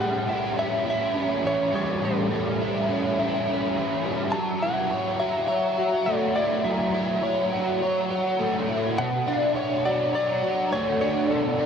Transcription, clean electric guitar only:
0, 0, Header, 1, 2, 480
1, 0, Start_track
1, 0, Tempo, 580271
1, 1668, Time_signature, 4, 2, 24, 8
1, 9643, End_track
2, 0, Start_track
2, 0, Title_t, "Clean electric guitar"
2, 0, Program_c, 0, 27
2, 7, Note_on_c, 0, 78, 95
2, 485, Note_off_c, 0, 78, 0
2, 489, Note_on_c, 0, 76, 92
2, 726, Note_off_c, 0, 76, 0
2, 744, Note_on_c, 0, 76, 98
2, 1212, Note_off_c, 0, 76, 0
2, 1215, Note_on_c, 0, 73, 90
2, 1441, Note_off_c, 0, 73, 0
2, 1451, Note_on_c, 0, 73, 84
2, 1686, Note_off_c, 0, 73, 0
2, 1694, Note_on_c, 0, 69, 71
2, 3085, Note_off_c, 0, 69, 0
2, 3572, Note_on_c, 0, 81, 91
2, 3823, Note_off_c, 0, 81, 0
2, 3826, Note_on_c, 0, 78, 105
2, 4295, Note_off_c, 0, 78, 0
2, 4299, Note_on_c, 0, 76, 94
2, 4521, Note_off_c, 0, 76, 0
2, 4531, Note_on_c, 0, 76, 95
2, 5011, Note_off_c, 0, 76, 0
2, 5014, Note_on_c, 0, 73, 86
2, 5255, Note_off_c, 0, 73, 0
2, 5258, Note_on_c, 0, 74, 85
2, 5492, Note_off_c, 0, 74, 0
2, 5495, Note_on_c, 0, 76, 77
2, 6905, Note_off_c, 0, 76, 0
2, 7431, Note_on_c, 0, 78, 100
2, 7671, Note_off_c, 0, 78, 0
2, 7675, Note_on_c, 0, 76, 92
2, 8148, Note_off_c, 0, 76, 0
2, 8152, Note_on_c, 0, 74, 94
2, 8387, Note_off_c, 0, 74, 0
2, 8397, Note_on_c, 0, 74, 98
2, 8869, Note_off_c, 0, 74, 0
2, 8872, Note_on_c, 0, 73, 90
2, 9099, Note_off_c, 0, 73, 0
2, 9109, Note_on_c, 0, 73, 90
2, 9353, Note_on_c, 0, 69, 71
2, 9355, Note_off_c, 0, 73, 0
2, 9643, Note_off_c, 0, 69, 0
2, 9643, End_track
0, 0, End_of_file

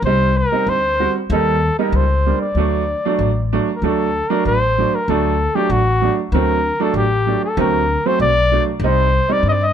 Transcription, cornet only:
0, 0, Header, 1, 2, 480
1, 0, Start_track
1, 0, Tempo, 625652
1, 47, Time_signature, 2, 2, 24, 8
1, 7466, End_track
2, 0, Start_track
2, 0, Title_t, "Cornet"
2, 0, Program_c, 0, 56
2, 36, Note_on_c, 0, 72, 89
2, 287, Note_on_c, 0, 70, 87
2, 298, Note_off_c, 0, 72, 0
2, 530, Note_on_c, 0, 72, 95
2, 542, Note_off_c, 0, 70, 0
2, 892, Note_off_c, 0, 72, 0
2, 1017, Note_on_c, 0, 69, 84
2, 1351, Note_off_c, 0, 69, 0
2, 1371, Note_on_c, 0, 70, 68
2, 1500, Note_on_c, 0, 72, 80
2, 1512, Note_off_c, 0, 70, 0
2, 1848, Note_off_c, 0, 72, 0
2, 1853, Note_on_c, 0, 74, 69
2, 2667, Note_off_c, 0, 74, 0
2, 2886, Note_on_c, 0, 70, 54
2, 2949, Note_on_c, 0, 69, 73
2, 2960, Note_off_c, 0, 70, 0
2, 3298, Note_on_c, 0, 70, 73
2, 3309, Note_off_c, 0, 69, 0
2, 3419, Note_off_c, 0, 70, 0
2, 3422, Note_on_c, 0, 72, 87
2, 3796, Note_on_c, 0, 70, 74
2, 3808, Note_off_c, 0, 72, 0
2, 3908, Note_on_c, 0, 69, 82
2, 3919, Note_off_c, 0, 70, 0
2, 4261, Note_on_c, 0, 67, 76
2, 4273, Note_off_c, 0, 69, 0
2, 4382, Note_on_c, 0, 66, 89
2, 4393, Note_off_c, 0, 67, 0
2, 4741, Note_off_c, 0, 66, 0
2, 4864, Note_on_c, 0, 70, 86
2, 5238, Note_on_c, 0, 69, 70
2, 5250, Note_off_c, 0, 70, 0
2, 5336, Note_off_c, 0, 69, 0
2, 5341, Note_on_c, 0, 67, 83
2, 5674, Note_off_c, 0, 67, 0
2, 5708, Note_on_c, 0, 69, 70
2, 5814, Note_off_c, 0, 69, 0
2, 5834, Note_on_c, 0, 70, 87
2, 6186, Note_on_c, 0, 72, 80
2, 6197, Note_off_c, 0, 70, 0
2, 6294, Note_off_c, 0, 72, 0
2, 6299, Note_on_c, 0, 74, 108
2, 6630, Note_off_c, 0, 74, 0
2, 6795, Note_on_c, 0, 72, 98
2, 7150, Note_on_c, 0, 74, 86
2, 7162, Note_off_c, 0, 72, 0
2, 7259, Note_off_c, 0, 74, 0
2, 7276, Note_on_c, 0, 75, 91
2, 7290, Note_on_c, 0, 74, 85
2, 7302, Note_off_c, 0, 75, 0
2, 7388, Note_on_c, 0, 75, 98
2, 7400, Note_off_c, 0, 74, 0
2, 7466, Note_off_c, 0, 75, 0
2, 7466, End_track
0, 0, End_of_file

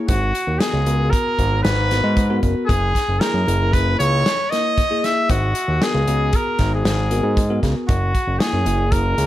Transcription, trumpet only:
0, 0, Header, 1, 2, 480
1, 0, Start_track
1, 0, Key_signature, 5, "minor"
1, 0, Tempo, 519931
1, 78, Time_signature, 5, 2, 24, 8
1, 8553, End_track
2, 0, Start_track
2, 0, Title_t, "Trumpet"
2, 0, Program_c, 0, 56
2, 73, Note_on_c, 0, 66, 81
2, 546, Note_on_c, 0, 68, 77
2, 560, Note_off_c, 0, 66, 0
2, 1017, Note_on_c, 0, 70, 84
2, 1031, Note_off_c, 0, 68, 0
2, 1500, Note_off_c, 0, 70, 0
2, 1505, Note_on_c, 0, 71, 93
2, 2197, Note_off_c, 0, 71, 0
2, 2459, Note_on_c, 0, 68, 83
2, 2954, Note_on_c, 0, 70, 79
2, 2968, Note_off_c, 0, 68, 0
2, 3443, Note_on_c, 0, 71, 83
2, 3457, Note_off_c, 0, 70, 0
2, 3678, Note_off_c, 0, 71, 0
2, 3683, Note_on_c, 0, 73, 101
2, 4157, Note_on_c, 0, 75, 109
2, 4171, Note_off_c, 0, 73, 0
2, 4656, Note_on_c, 0, 76, 93
2, 4670, Note_off_c, 0, 75, 0
2, 4899, Note_on_c, 0, 66, 92
2, 4913, Note_off_c, 0, 76, 0
2, 5389, Note_on_c, 0, 68, 86
2, 5403, Note_off_c, 0, 66, 0
2, 5868, Note_on_c, 0, 70, 80
2, 5882, Note_off_c, 0, 68, 0
2, 6215, Note_off_c, 0, 70, 0
2, 6229, Note_on_c, 0, 68, 77
2, 7017, Note_off_c, 0, 68, 0
2, 7271, Note_on_c, 0, 66, 78
2, 7748, Note_on_c, 0, 68, 82
2, 7761, Note_off_c, 0, 66, 0
2, 8235, Note_on_c, 0, 70, 82
2, 8249, Note_off_c, 0, 68, 0
2, 8553, Note_off_c, 0, 70, 0
2, 8553, End_track
0, 0, End_of_file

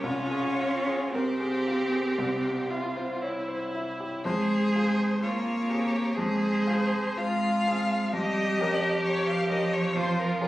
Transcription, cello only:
0, 0, Header, 1, 2, 480
1, 0, Start_track
1, 0, Key_signature, -4, "minor"
1, 0, Tempo, 1094891
1, 14, Time_signature, 4, 2, 24, 8
1, 494, Tempo, 1038062
1, 1934, Tempo, 956938
1, 2894, Tempo, 1011804
1, 3374, Tempo, 956938
1, 3854, Tempo, 913242
1, 5091, End_track
2, 0, Start_track
2, 0, Title_t, "Cello"
2, 0, Program_c, 0, 42
2, 5, Note_on_c, 0, 61, 94
2, 486, Note_on_c, 0, 60, 76
2, 492, Note_off_c, 0, 61, 0
2, 1451, Note_off_c, 0, 60, 0
2, 1939, Note_on_c, 0, 56, 82
2, 2435, Note_on_c, 0, 58, 79
2, 2443, Note_off_c, 0, 56, 0
2, 2897, Note_on_c, 0, 56, 73
2, 2904, Note_off_c, 0, 58, 0
2, 3368, Note_off_c, 0, 56, 0
2, 3370, Note_on_c, 0, 56, 70
2, 3852, Note_on_c, 0, 55, 80
2, 3860, Note_off_c, 0, 56, 0
2, 4096, Note_on_c, 0, 53, 78
2, 4104, Note_off_c, 0, 55, 0
2, 4337, Note_off_c, 0, 53, 0
2, 4340, Note_on_c, 0, 53, 93
2, 5091, Note_off_c, 0, 53, 0
2, 5091, End_track
0, 0, End_of_file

